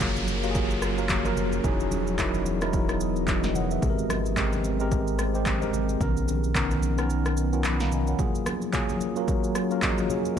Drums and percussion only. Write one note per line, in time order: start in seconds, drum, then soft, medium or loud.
0.00 kick medium
0.00 clap medium
0.00 low conga medium
0.00 shaker medium
0.16 high conga medium
0.16 shaker medium
0.27 high conga medium
0.27 shaker medium
0.43 shaker medium
0.55 kick loud
0.55 shaker medium
0.71 shaker medium
0.82 cross-stick medium
0.82 shaker medium
0.98 shaker soft
1.09 kick loud
1.09 clap medium
1.09 high conga medium
1.09 shaker medium
1.25 high conga medium
1.25 shaker medium
1.36 low conga medium
1.36 shaker medium
1.52 shaker medium
1.64 kick loud
1.64 low conga medium
1.64 shaker medium
1.80 shaker medium
1.91 high conga medium
1.91 shaker medium
2.07 shaker medium
2.18 kick medium
2.18 clap medium
2.18 low conga medium
2.18 shaker medium
2.34 high conga medium
2.34 shaker medium
2.46 high conga medium
2.46 shaker medium
2.61 cross-stick medium
2.61 shaker medium
2.73 kick loud
2.73 shaker medium
2.89 cross-stick medium
2.89 shaker medium
3.00 shaker loud
3.16 shaker soft
3.28 kick loud
3.28 clap medium
3.28 high conga medium
3.28 shaker medium
3.43 snare medium
3.43 high conga medium
3.43 shaker medium
3.55 low conga medium
3.55 shaker medium
3.71 shaker medium
3.82 kick loud
3.82 low conga medium
3.82 shaker medium
3.99 shaker medium
4.10 cross-stick loud
4.10 high conga medium
4.10 shaker medium
4.26 shaker medium
4.37 kick medium
4.37 clap medium
4.37 low conga medium
4.37 shaker medium
4.53 high conga medium
4.53 shaker medium
4.64 high conga medium
4.64 shaker medium
4.80 shaker medium
4.92 kick loud
4.92 shaker medium
5.07 shaker medium
5.19 cross-stick medium
5.19 shaker loud
5.35 shaker soft
5.46 kick loud
5.46 clap medium
5.46 high conga medium
5.46 shaker medium
5.62 high conga medium
5.62 shaker medium
5.73 low conga medium
5.73 shaker medium
5.89 shaker medium
6.00 kick loud
6.00 low conga medium
6.00 shaker medium
6.17 shaker medium
6.28 high conga medium
6.28 shaker medium
6.44 shaker medium
6.55 kick medium
6.55 clap medium
6.55 low conga medium
6.55 shaker medium
6.71 high conga medium
6.71 shaker medium
6.82 high conga medium
6.82 shaker medium
6.98 cross-stick medium
6.98 shaker medium
7.10 shaker medium
7.26 cross-stick medium
7.26 shaker medium
7.37 shaker medium
7.53 shaker soft
7.64 clap medium
7.64 high conga medium
7.64 shaker medium
7.80 snare medium
7.80 high conga medium
7.80 shaker medium
7.91 low conga medium
7.91 shaker medium
8.07 shaker medium
8.19 kick loud
8.19 low conga medium
8.19 shaker medium
8.35 shaker medium
8.46 cross-stick loud
8.46 high conga medium
8.46 shaker medium
8.62 shaker medium
8.73 kick medium
8.73 clap medium
8.73 low conga medium
8.73 shaker medium
8.89 high conga medium
8.89 shaker medium
9.01 high conga soft
9.01 shaker medium
9.16 shaker medium
9.28 kick loud
9.28 shaker medium
9.44 shaker medium
9.55 cross-stick medium
9.55 shaker loud
9.71 shaker soft
9.82 kick loud
9.82 clap medium
9.82 high conga medium
9.82 shaker medium
9.98 high conga medium
9.98 shaker medium
10.10 low conga medium
10.10 shaker medium
10.25 shaker medium